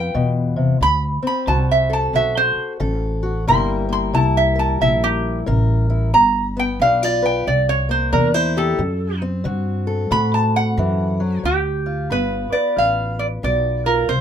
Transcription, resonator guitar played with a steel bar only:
0.00 0.29 G5 medium
0.83 1.04 B5 loud
1.27 1.48 B5 medium
1.48 1.70 A5 medium
1.71 1.92 E5 medium
1.93 2.14 A5 medium
2.16 2.37 E5 medium
2.37 2.72 C5 loud
3.48 3.69 C6 loud
3.93 4.14 C6 medium
4.15 4.36 A5 loud
4.37 4.58 E5 medium
4.59 4.80 A5 medium
4.82 5.02 E5 medium
5.04 5.38 G4 loud
6.14 6.56 A#5 loud
6.59 6.80 G5 loud
6.82 7.02 F5 loud
7.04 7.24 D5 medium
7.26 7.46 G5 medium
7.48 7.68 D5 medium
7.69 7.90 C#5 loud
7.91 8.12 C5 medium
8.13 8.34 A#4 medium
8.34 8.56 C5 medium
8.58 9.21 A4 loud
10.12 10.33 B5 loud
10.34 10.55 A5 medium
10.56 11.42 F#5 loud
11.45 12.13 G4 loud
12.12 12.54 B4 loud
12.52 12.78 D5 medium
12.78 13.21 F5 loud
13.19 13.26 D5 medium
13.44 13.87 D5 medium
13.86 14.11 A#4 medium
14.09 14.21 C5 loud

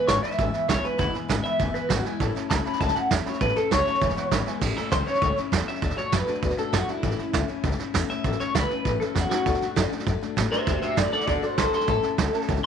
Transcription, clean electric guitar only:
0.07 0.22 C#5 medium
0.23 0.67 E5 loud
0.69 0.84 C#5 loud
0.84 0.99 B4 medium
0.99 1.14 E4 medium
1.44 1.73 E5 loud
1.74 1.89 B4 medium
1.89 2.04 F#4 medium
2.04 2.34 E4 loud
2.50 2.79 B5 loud
2.80 2.95 A5 medium
2.95 3.10 F#5 medium
3.10 3.26 E5 medium
3.26 3.41 C#5 medium
3.41 3.56 B4 medium
3.56 3.71 A4 loud
3.72 4.61 C#5 loud
4.61 4.77 G4 loud
4.77 4.91 A4 loud
4.92 5.06 C5 medium
5.07 5.36 C#5 medium
5.68 5.97 E5 loud
5.98 6.13 C#5 medium
6.13 6.57 B4 medium
6.59 6.73 A4 medium
6.74 6.89 F#4 loud
6.89 7.48 E4 loud
8.10 8.39 E5 medium
8.40 8.55 C#5 loud
8.55 8.99 B4 medium
9.00 9.14 A4 medium
9.15 9.28 F#4 medium
9.30 9.89 F#4 loud
10.52 10.65 C5 loud
10.52 10.66 E5 medium
10.66 10.80 C5 medium
10.66 10.81 E5 medium
10.82 10.97 C5 medium
10.82 10.97 E5 loud
10.97 11.11 A4 medium
10.97 11.11 D5 loud
11.12 11.26 A4 medium
11.12 11.26 D5 medium
11.27 11.41 A4 medium
11.27 11.43 D5 medium
11.43 11.57 A4 medium
11.43 11.57 C5 loud
11.58 11.72 A4 medium
11.58 11.73 C5 medium
11.74 11.87 A4 medium
11.74 11.89 C5 medium
11.89 12.48 A4 loud

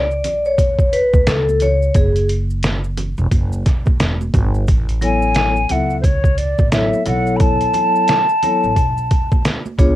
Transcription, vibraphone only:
0.00 0.47 D5 medium
0.46 0.94 C#5 medium
0.93 1.28 B4 medium
1.28 1.62 A4 medium
1.62 1.96 C#5 medium
1.96 2.27 G#4 medium
5.01 5.52 F#3 medium
5.01 5.52 B3 medium
5.01 5.52 E4 medium
5.01 5.53 A4 medium
5.01 5.53 C#5 medium
5.71 5.96 F#3 medium
5.71 5.96 B3 medium
5.71 5.96 E4 medium
5.71 5.97 A4 medium
5.71 5.97 E5 medium
6.72 6.98 F#3 medium
6.72 6.98 B3 medium
6.72 6.98 E4 medium
6.72 6.98 A4 medium
6.72 6.98 C#5 medium
7.06 8.16 F#3 medium
7.06 8.16 B3 medium
7.06 8.16 E4 medium
7.06 8.17 A4 medium
7.06 8.17 C#5 medium
8.43 8.69 F#3 medium
8.43 8.69 B3 medium
8.43 8.69 E4 medium
8.43 8.69 A4 medium
8.43 8.69 C#5 medium
9.78 9.96 B3 medium
9.78 9.96 D4 medium
9.78 9.96 F4 medium
9.78 9.96 G#4 medium
9.78 9.96 C#5 loud

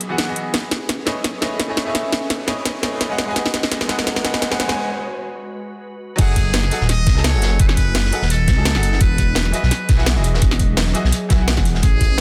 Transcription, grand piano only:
0.09 0.25 E3 medium
0.09 0.25 B3 medium
0.09 0.26 F#4 medium
0.09 0.26 G#4 medium
0.09 0.26 F#5 medium
0.27 0.52 E3 medium
0.27 0.53 B3 medium
0.27 0.53 F#4 medium
0.27 0.53 G#4 medium
0.27 0.54 D#5 medium
1.05 1.13 A3 medium
1.05 1.13 E4 medium
1.05 1.13 G#4 medium
1.05 1.14 B4 medium
1.05 1.14 C#5 medium
1.05 1.14 D#5 loud
1.41 1.66 A3 medium
1.41 1.66 E4 medium
1.41 1.67 G#4 medium
1.41 1.67 B4 medium
1.41 1.67 C#5 medium
1.41 1.68 D#5 loud
1.68 1.83 A3 medium
1.68 1.84 E4 medium
1.68 1.84 G#4 medium
1.68 1.85 B4 medium
1.68 1.85 C#5 medium
1.68 1.85 D#5 medium
1.84 2.45 A3 loud
1.84 2.45 E4 medium
1.84 2.46 G#4 medium
1.84 2.46 B4 medium
1.88 2.47 C#5 medium
1.88 2.47 E5 loud
2.47 2.54 A3 medium
2.47 2.54 E4 medium
2.47 2.55 G#4 medium
2.47 2.55 B4 medium
2.47 2.55 C#5 medium
2.47 2.55 D#5 loud
2.82 3.07 A3 medium
2.82 3.08 E4 medium
2.82 3.08 G#4 medium
2.82 3.08 B4 medium
2.82 3.09 C#5 medium
2.82 3.09 D#5 medium
3.09 3.24 G#3 medium
3.09 3.25 G#4 medium
3.09 3.26 B4 medium
3.09 3.26 D#5 medium
3.09 3.26 F#5 medium
3.25 3.86 G#3 loud
3.25 3.86 G#4 medium
3.25 3.87 B4 medium
3.29 3.88 D#5 medium
3.29 3.89 G#5 loud
3.88 3.95 G#3 medium
3.88 3.96 G#4 medium
3.88 3.96 B4 medium
3.88 3.96 D#5 medium
3.88 3.97 F#5 loud
4.23 4.48 G#3 medium
4.23 4.49 G#4 medium
4.23 4.49 B4 medium
4.23 4.50 D#5 medium
4.23 4.50 F#5 medium
4.50 4.65 G#3 medium
4.50 4.66 G#4 medium
4.50 4.67 B4 medium
4.50 4.67 D#5 medium
4.50 4.67 F#5 loud
4.67 4.76 G#3 loud
4.67 4.77 G#4 medium
4.67 4.77 B4 medium
4.71 4.78 D#5 medium
4.71 4.79 G#5 loud
6.16 6.67 F#3 loud
6.16 6.68 D#4 medium
6.16 6.68 G#4 medium
6.20 6.69 A3 medium
6.20 6.70 F#5 loud
6.70 6.78 F#3 medium
6.70 6.78 D#4 medium
6.70 6.78 G#4 medium
6.70 6.79 A4 medium
6.70 6.79 F#5 loud
7.15 7.30 F#3 medium
7.15 7.31 D#4 medium
7.15 7.32 G#4 medium
7.15 7.32 A4 medium
7.15 7.32 A5 loud
7.31 8.09 F#3 medium
7.31 8.10 D#4 medium
7.31 8.11 G#4 medium
7.31 8.11 A4 medium
7.37 8.12 F#5 medium
8.11 8.19 F#3 medium
8.11 8.19 D#4 medium
8.11 8.19 G#4 medium
8.11 8.20 A4 medium
8.11 8.20 F#5 loud
8.56 8.72 F#3 medium
8.56 8.73 D#4 medium
8.56 8.73 G#4 medium
8.56 8.73 A4 medium
8.56 8.74 A5 loud
8.74 8.99 F#3 medium
8.74 9.00 D#4 medium
8.74 9.00 G#4 medium
8.74 9.00 A4 medium
8.74 9.01 F#5 medium
9.52 9.60 E3 medium
9.52 9.60 E4 medium
9.52 9.61 F#4 medium
9.52 9.61 G#4 medium
9.52 9.61 D#5 loud
9.97 10.12 E3 medium
9.97 10.13 E4 medium
9.97 10.14 F#4 medium
9.97 10.14 G#4 medium
9.97 10.15 F#5 loud
10.13 10.92 E3 medium
10.13 10.92 E4 medium
10.13 10.93 F#4 medium
10.18 10.94 G#4 medium
10.18 10.94 D#5 medium
10.94 11.01 E3 medium
10.94 11.01 E4 medium
10.94 11.02 F#4 medium
10.94 11.02 G#4 medium
10.94 11.02 D#5 loud
11.29 11.35 E3 medium
11.29 11.37 E4 medium
11.29 11.37 F#4 medium
11.29 11.38 G#4 medium
11.29 11.38 E5 medium
11.37 11.81 E3 medium
11.37 11.81 E4 medium
11.37 11.82 F#4 medium
11.41 11.83 G#4 medium
11.41 11.84 F#5 medium

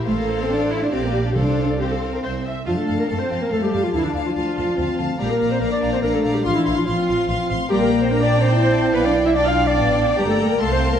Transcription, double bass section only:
0.07 0.88 A1 soft
0.91 1.34 A#1 soft
1.35 2.22 C2 soft
2.23 2.46 C2 soft
2.66 2.74 F2 soft
2.89 2.97 F2 soft
3.09 3.17 F2 soft
3.30 3.38 F2 soft
3.51 3.59 F2 soft
3.72 3.80 F2 soft
3.93 4.01 D2 soft
4.15 4.23 D2 soft
4.37 4.45 D2 soft
4.57 4.65 D2 soft
4.78 4.86 D2 soft
4.99 5.07 D2 soft
5.20 5.28 A#1 soft
5.41 5.49 A#1 soft
5.62 5.70 A#1 soft
5.83 5.91 A#1 soft
6.04 6.12 A#1 soft
6.25 6.33 A#1 soft
6.47 6.55 A1 soft
6.67 6.75 A1 medium
6.88 6.96 A1 soft
7.09 7.17 A1 soft
7.29 7.37 A1 medium
7.50 7.58 A1 medium
7.70 8.90 A#1 medium
8.94 9.75 B1 medium
9.77 10.18 A1 medium
10.19 10.59 G1 medium
10.60 11.00 C2 medium

